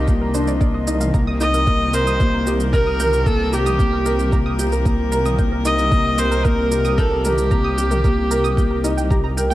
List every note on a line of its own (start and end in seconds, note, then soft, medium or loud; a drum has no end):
0.00 1.11 C2 medium
0.00 1.10 C3 medium
0.00 9.54 D#3 medium
0.00 1.10 G3 medium
0.00 0.08 A#3 medium
0.00 1.10 A#3 medium
0.00 0.34 D4 medium
0.00 0.87 D#4 loud
0.00 1.10 F4 medium
0.00 1.10 D#5 medium
0.08 0.33 A#3 medium
0.08 kick loud
0.08 shaker soft
0.21 0.29 A#4 medium
0.34 0.60 D4 medium
0.34 0.46 C5 medium
0.34 shaker medium
0.47 0.53 D5 medium
0.47 shaker soft
0.60 0.86 A#3 medium
0.60 0.69 D5 medium
0.60 kick loud
0.60 shaker soft
0.74 0.86 D#5 medium
0.87 1.13 D#4 medium
0.87 0.95 D#5 medium
0.87 shaker medium
1.01 1.13 F5 medium
1.01 mid tom medium
1.01 shaker soft
1.14 9.54 C2 medium
1.14 9.54 C3 medium
1.14 1.39 A#3 medium
1.14 9.54 A#3 medium
1.14 9.54 G4 medium
1.14 9.54 A#4 medium
1.14 1.19 A#5 medium
1.14 kick loud
1.14 shaker soft
1.27 1.35 D#6 loud
1.40 1.66 D#4 medium
1.40 1.95 D#5 loud
1.40 1.49 G6 medium
1.40 shaker medium
1.54 1.59 A#4 medium
1.54 shaker soft
1.67 1.92 A#3 medium
1.67 1.75 A#4 medium
1.67 kick loud
1.67 shaker soft
1.93 2.19 A#4 medium
1.93 2.47 C5 loud
1.93 1.99 A#5 medium
1.93 shaker medium
2.07 2.15 D#6 loud
2.07 shaker soft
2.20 2.45 A#3 loud
2.20 2.28 G6 medium
2.20 kick loud
2.20 shaker soft
2.34 2.38 A#4 medium
2.47 2.72 G4 medium
2.47 2.55 A#4 medium
2.47 shaker medium
2.60 shaker soft
2.73 3.28 A#4 loud
2.73 2.98 A#4 loud
2.73 2.78 A#5 medium
2.73 kick loud
2.73 shaker soft
2.87 2.95 D#6 loud
3.00 3.25 A#4 medium
3.00 3.08 G6 medium
3.00 mid tom medium
3.00 shaker medium
3.13 3.18 A#4 medium
3.13 shaker soft
3.26 3.51 A#3 medium
3.26 3.55 A4 loud
3.26 3.34 A#4 medium
3.26 kick loud
3.26 shaker soft
3.53 3.78 G4 medium
3.53 4.33 G4 loud
3.53 3.58 A#5 medium
3.53 shaker medium
3.66 3.74 D#6 loud
3.66 mid tom medium
3.66 shaker soft
3.79 4.05 A#3 medium
3.79 3.87 G6 medium
3.79 kick loud
3.79 shaker soft
3.93 3.98 A#4 medium
4.06 4.14 A#4 medium
4.06 4.31 A#4 medium
4.06 shaker medium
4.19 shaker soft
4.32 4.58 A#3 medium
4.32 4.37 A#5 medium
4.32 kick loud
4.32 shaker soft
4.46 4.54 D#6 loud
4.59 4.84 G4 medium
4.59 4.67 G6 medium
4.59 shaker medium
4.72 4.77 A#4 medium
4.72 shaker soft
4.85 5.11 A#3 medium
4.85 4.94 A#4 medium
4.85 kick loud
4.85 shaker soft
5.12 5.37 A#4 medium
5.12 5.17 A#5 medium
5.12 shaker medium
5.25 5.34 D#6 loud
5.25 mid tom medium
5.25 shaker soft
5.38 5.64 A#3 medium
5.38 5.47 G6 medium
5.38 kick loud
5.38 shaker soft
5.52 5.57 A#4 medium
5.65 5.90 D#4 medium
5.65 5.73 A#4 medium
5.65 6.20 D#5 loud
5.65 shaker medium
5.79 shaker soft
5.92 6.17 A#3 medium
5.92 5.97 A#5 medium
5.92 kick loud
5.92 shaker soft
6.05 6.13 D#6 loud
6.18 6.43 A#4 medium
6.18 6.46 C5 loud
6.18 6.26 G6 medium
6.18 shaker medium
6.31 6.36 A#4 medium
6.31 shaker soft
6.45 6.70 A#3 loud
6.45 7.00 A#4 loud
6.45 6.53 A#4 medium
6.45 kick loud
6.45 shaker soft
6.71 6.97 G4 medium
6.71 6.76 A#5 medium
6.71 shaker medium
6.85 6.93 D#6 loud
6.85 shaker soft
6.98 7.26 A4 loud
6.98 7.23 A#4 loud
6.98 7.06 G6 medium
6.98 kick loud
6.98 shaker soft
7.11 7.16 A#4 medium
7.25 9.11 G4 medium
7.25 7.33 A#4 medium
7.25 7.50 A#4 medium
7.25 mid tom medium
7.25 shaker medium
7.38 shaker soft
7.51 7.76 A#3 medium
7.51 7.56 A#5 medium
7.51 kick loud
7.51 shaker soft
7.64 7.72 D#6 loud
7.78 8.03 G4 medium
7.78 7.86 G6 medium
7.78 shaker medium
7.91 7.96 A#4 medium
7.91 mid tom medium
7.91 shaker soft
8.04 8.30 A#3 medium
8.04 8.12 A#4 medium
8.04 kick loud
8.04 shaker soft
8.31 8.56 A#4 medium
8.31 8.36 A#5 medium
8.31 shaker medium
8.44 8.52 D#6 loud
8.44 shaker soft
8.57 8.83 A#3 medium
8.57 8.65 G6 medium
8.57 kick loud
8.57 shaker soft
8.71 8.75 A#4 medium
8.84 9.09 D#4 medium
8.84 8.92 A#4 medium
8.84 shaker medium
8.97 9.05 G5 medium
8.97 shaker soft
9.10 9.26 G4 medium
9.10 9.18 A#5 loud
9.10 kick loud
9.10 shaker soft
9.24 9.32 A#5 medium
9.37 9.54 A#4 medium
9.37 9.49 G5 medium
9.37 shaker medium
9.50 9.54 G5 loud